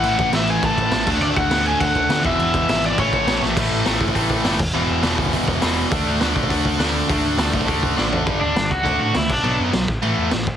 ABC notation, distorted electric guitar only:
X:1
M:4/4
L:1/8
Q:1/4=204
K:A
V:1 name="Distorted electric guitar" clef=bass
[A,,E,A,]6- [A,,E,A,] [D,A,D]- | [D,A,D]6- [D,A,D] [E,,B,,E,]- | [E,,B,,E,]4 [A,,E,A,]4 | [K:D] [A,,E,A,]2 [A,,E,A,]2 [A,,E,A,]2 [A,,E,A,] z |
[E,,B,,E,]2 [E,,B,,E,]2 [E,,B,,E,]2 [E,,B,,E,]2 | [D,A,D]2 [D,A,D]2 [D,A,D]2 [D,A,D]2 | [D,A,D]2 [D,A,D]2 [D,A,D]2 [D,A,D]2 | [G,,D,G,]2 [G,,D,] z [D,A,D]2 [D,A,] z |
[B,,F,B,]2 [B,,F,] z [A,,E,A,]2 [A,,E,] z |]